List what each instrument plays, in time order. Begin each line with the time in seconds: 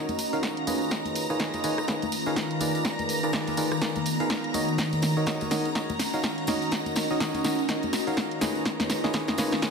Already playing: fm electric piano D#3 D#4 F#4 A#4 C#5 D#5, ambient pad C#4 F#4 D#5 A#5, string machine A#5 A#6
0.09 closed hi-hat, tambourine, high conga
0.19 closed hi-hat, open hi-hat, tambourine
0.33 fm electric piano D#3 D#4 F#4 A#4 C#5 F5, closed hi-hat, tambourine
0.43 kick, snare, closed hi-hat, tambourine
0.57 closed hi-hat
0.67 fm electric piano D#3 F4 G#4 B4 C#5 D#5, closed hi-hat, open hi-hat, tambourine, high conga
0.82 tambourine
0.91 ambient pad D#3, kick, snare, closed hi-hat, tambourine
1.05 closed hi-hat, tambourine, high conga
1.15 closed hi-hat, open hi-hat, tambourine
1.22 ambient pad B4
1.30 fm electric piano D#3 F4 G#4 B4 C#5 D#5, tambourine
1.40 fm electric piano D#3 F4 G#4 B4 C#5 D#5, kick, snare, closed hi-hat, tambourine
1.53 snare, closed hi-hat, tambourine, high conga
1.59 ambient pad F4
1.64 fm electric piano D#3 F4 G#4 B4 C#5 D#5, closed hi-hat, open hi-hat, tambourine
1.78 cross-stick, closed hi-hat, tambourine
1.88 fm electric piano D#3 F4 G#4 B4 C#5 D#5, kick, snare, closed hi-hat, tambourine
2.02 closed hi-hat, tambourine, high conga
2.12 closed hi-hat, open hi-hat, tambourine
2.26 fm electric piano D#3 F4 G#4 B4 C#5 F5, snare, tambourine
2.36 kick, snare, closed hi-hat, tambourine
2.51 closed hi-hat
2.60 fm electric piano D#3 F4 G#4 A#4 B4 D5, closed hi-hat, open hi-hat, tambourine, high conga
2.75 closed hi-hat, tambourine
2.85 kick, snare, closed hi-hat, tambourine
2.99 closed hi-hat, tambourine, high conga
3.09 closed hi-hat, open hi-hat, tambourine
3.15 ambient pad B3
3.23 fm electric piano D#3 F4 G#4 A#4 B4 D5, closed hi-hat, tambourine
3.27 ambient pad G#4 A#5
3.33 fm electric piano D#3 F4 G#4 A#4 B4 D5, kick, snare, closed hi-hat, tambourine
3.47 snare, closed hi-hat, tambourine, high conga
3.57 fm electric piano D#3 F4 G#4 A#4 B4 D5, ambient pad D5, closed hi-hat, open hi-hat, tambourine
3.72 cross-stick, closed hi-hat, tambourine
3.82 fm electric piano D#3 F4 G#4 A#4 B4 D5, kick, snare, closed hi-hat, tambourine
3.95 closed hi-hat, tambourine, high conga
4.06 closed hi-hat, open hi-hat, tambourine
4.20 fm electric piano D#3 F4 G#4 A#4 B4 F5, closed hi-hat, tambourine
4.30 kick, snare, closed hi-hat, tambourine
4.44 closed hi-hat
4.54 fm electric piano D#3 D#4 F#4 A#4 C#5 D#5, closed hi-hat, open hi-hat, tambourine, high conga
4.69 closed hi-hat, tambourine
4.78 ambient pad C#4, kick, snare, closed hi-hat, tambourine
4.92 closed hi-hat, tambourine, high conga
5.02 snare, closed hi-hat, open hi-hat, tambourine
5.10 ambient pad F#4
5.17 fm electric piano D#3 D#4 F#4 A#4 C#5 D#5, tambourine
5.26 fm electric piano D#3 D#4 F#4 A#4 C#5 D#5, kick, snare, closed hi-hat, tambourine
5.41 snare, closed hi-hat, tambourine, high conga
5.51 fm electric piano D#3 D#4 F#4 A#4 C#5 D#5, snare, closed hi-hat, open hi-hat, tambourine
5.65 closed hi-hat, tambourine
5.70 ambient pad D#5
5.75 fm electric piano D#3 D#4 F#4 A#4 C#5 D#5, kick, snare, closed hi-hat, tambourine
5.89 closed hi-hat, tambourine, high conga
5.99 snare, closed hi-hat, open hi-hat, tambourine
6.14 fm electric piano D#3 D#4 F#4 A#4 C#5 F5, snare, tambourine
6.23 kick, snare, closed hi-hat, tambourine
6.38 closed hi-hat
6.47 fm electric piano D#3 D#4 F#4 A#4 C#5 D#5, snare, closed hi-hat, open hi-hat, tambourine, high conga
6.62 closed hi-hat, tambourine
6.71 kick, snare, closed hi-hat, tambourine
6.86 closed hi-hat, tambourine, high conga
6.96 snare, closed hi-hat, open hi-hat, tambourine
7.10 fm electric piano D#3 D#4 F#4 A#4 C#5 D#5, tambourine
7.20 fm electric piano D#3 D#4 F#4 A#4 C#5 D#5, kick, snare, closed hi-hat, tambourine
7.34 snare, closed hi-hat, tambourine, high conga
7.44 fm electric piano D#3 D#4 F#4 A#4 C#5 D#5, snare, closed hi-hat, open hi-hat, tambourine
7.59 closed hi-hat, tambourine
7.69 fm electric piano D#3 D#4 F#4 A#4 C#5 D#5, kick, snare, closed hi-hat, tambourine
7.82 closed hi-hat, tambourine, high conga
7.93 snare, closed hi-hat, open hi-hat, tambourine
8.07 fm electric piano D#3 D#4 F#4 A#4 C#5 F5, closed hi-hat, tambourine
8.17 kick, snare, closed hi-hat, tambourine
8.31 closed hi-hat
8.41 fm electric piano D#3 F4 G#4 B4 C#5 D#5, snare, closed hi-hat, open hi-hat, tambourine, high conga
8.55 tambourine
8.65 ambient pad D#3, kick, snare, closed hi-hat, tambourine
8.80 snare, closed hi-hat, tambourine, high conga
8.86 ambient pad F4, snare, closed hi-hat, open hi-hat, tambourine
9.04 fm electric piano D#3 F4 G#4 B4 C#5 D#5, snare, tambourine
9.13 fm electric piano D#3 F4 G#4 B4 C#5 D#5, kick, snare, closed hi-hat, tambourine
9.28 snare, closed hi-hat, tambourine, high conga
9.38 fm electric piano D#3 F4 G#4 B4 C#5 D#5, snare, closed hi-hat, open hi-hat, tambourine
9.52 snare, closed hi-hat, tambourine
9.62 fm electric piano D#3 F4 G#4 B4 C#5 D#5, kick, snare, closed hi-hat, tambourine